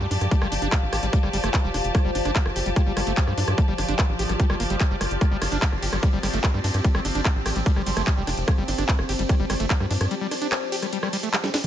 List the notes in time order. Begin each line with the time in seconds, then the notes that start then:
Already playing: F3 F4 G4 D5 A5
0.01 G2 G3
0.11 G2 D4, open hi-hat
0.21 G2, cross-stick, closed hi-hat
0.31 G3, kick, closed hi-hat
0.42 G1 G3, cross-stick
0.52 G1 D4, open hi-hat
0.62 G1 D4, closed hi-hat
0.72 kick, cross-stick, clap, closed hi-hat
0.82 A1
0.93 A1 G4, cross-stick, open hi-hat
1.03 A1 G3, closed hi-hat
1.13 G3, kick, closed hi-hat
1.23 G1 G3, cross-stick
1.33 G1 G3, open hi-hat
1.44 G1 A3, cross-stick, closed hi-hat
1.54 G3, kick, clap, closed hi-hat
1.64 F1 G3
1.74 F1 D4, cross-stick, open hi-hat
1.84 F1, closed hi-hat
1.95 G3, kick, cross-stick, closed hi-hat
2.05 G1 G3
2.15 G1 D4, open hi-hat
2.25 G1 D4, cross-stick, closed hi-hat
2.35 kick, clap, closed hi-hat
2.46 G1, cross-stick
2.56 G1 G4, open hi-hat
2.66 G1 G3, closed hi-hat
2.76 G3, kick, cross-stick, closed hi-hat
2.86 G1 G3
2.97 G1 G3, cross-stick, open hi-hat
3.07 G1 A3, closed hi-hat
3.17 G3, kick, clap, closed hi-hat
3.27 G2 G3, cross-stick
3.38 G2 D4, open hi-hat
3.48 G2, cross-stick, closed hi-hat
3.58 G3, kick, closed hi-hat
3.68 G1 G3
3.78 G1 D4, cross-stick, open hi-hat
3.89 G1 D4, closed hi-hat
3.99 kick, cross-stick, clap, closed hi-hat
4.09 A1
4.19 A1 G4, open hi-hat
4.29 A1 G3, cross-stick, closed hi-hat
4.40 G3, kick, closed hi-hat
4.50 G1 G3, cross-stick
4.60 G1 A#3, open hi-hat
4.70 G1 G3, closed hi-hat
4.80 G3, kick, cross-stick, clap, closed hi-hat
4.91 G1 G3
5.01 G1 G3, cross-stick, open hi-hat
5.11 G1, closed hi-hat
5.21 G3 C4, kick, cross-stick, closed hi-hat
5.31 G1 G3
5.42 G1 D4, cross-stick, open hi-hat, ride
5.52 G1 D4, closed hi-hat
5.62 kick, clap, closed hi-hat
5.72 G1, cross-stick
5.82 G1 G4, open hi-hat, ride
5.93 G1 G3, cross-stick, closed hi-hat
6.03 G3, kick, closed hi-hat
6.13 G1 G3
6.23 G1 G3, cross-stick, open hi-hat, ride
6.33 G1 A3, closed hi-hat
6.44 G3, kick, cross-stick, clap, closed hi-hat
6.54 G2 G3
6.64 G2 D4, open hi-hat, ride
6.74 G2, cross-stick, closed hi-hat
6.84 G3, kick, closed hi-hat
6.95 G1 G3, cross-stick
7.05 G1 D4, open hi-hat, ride
7.15 G1 D4, closed hi-hat
7.25 kick, cross-stick, clap, closed hi-hat
7.36 A1
7.46 A1 G4, cross-stick, open hi-hat, ride
7.56 A1 G3, closed hi-hat
7.66 G3, kick, closed hi-hat
7.76 G1 G3, cross-stick
7.86 G1 G3, open hi-hat, ride
7.97 G1 A3, cross-stick, closed hi-hat
8.07 G3, kick, clap, closed hi-hat
8.17 F1 G3
8.27 F1 D4, cross-stick, open hi-hat, ride
8.38 F1, closed hi-hat
8.48 G3, kick, cross-stick, closed hi-hat
8.58 G1 G3
8.68 G1 D4, open hi-hat, ride
8.78 G1 D4, cross-stick, closed hi-hat
8.89 kick, clap, closed hi-hat
8.99 G1, cross-stick
9.09 G1 G4, open hi-hat, ride
9.19 G1 G3, closed hi-hat
9.29 G3, kick, cross-stick, closed hi-hat
9.40 G1 G3
9.50 G1 G3, cross-stick, open hi-hat, ride
9.60 G1 A3, closed hi-hat
9.70 G3, kick, clap, closed hi-hat
9.80 G2 G3, cross-stick
9.91 G2 D4, open hi-hat, ride
10.01 G2, cross-stick, closed hi-hat
10.11 G3, closed hi-hat
10.21 G3
10.31 D4, cross-stick, open hi-hat, ride
10.42 D4, closed hi-hat
10.52 cross-stick, clap, closed hi-hat
10.72 G4, open hi-hat, ride
10.82 G3, cross-stick, closed hi-hat
10.93 G3, closed hi-hat
11.03 G3, cross-stick
11.13 G3, open hi-hat, ride
11.23 A3, closed hi-hat
11.33 G3, cross-stick, clap, closed hi-hat
11.44 G3, snare
11.54 D4, snare, open hi-hat, ride